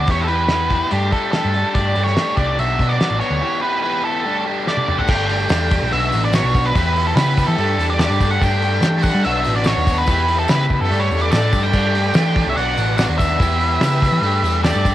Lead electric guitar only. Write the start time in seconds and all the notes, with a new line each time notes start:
Already playing: D5
0.11 C#5
0.21 A4
0.28 B4
0.92 G4
1.13 A4
1.32 A4
1.74 D5
2.04 C#5
2.37 D5
2.59 E5
2.89 D5
3.20 C#5
3.62 B4
3.82 B4
4.05 A4
4.68 D5
4.98 F#5
5.11 G5
5.93 E5
6.25 D5
6.35 C#5
6.66 B4
7.07 A4
7.16 B4
7.47 A4
7.90 D5
8.01 D5
8.31 F#5
8.43 G5
9.03 F#5
9.25 E5
9.56 D5
9.67 C#5
9.98 B4
10.39 A4
10.50 B4
10.81 A4
10.99 C#5
11.22 D5
11.32 D5
11.63 G5
12.50 E5
12.57 F#5
12.97 F#5
13.18 E5
14.64 D5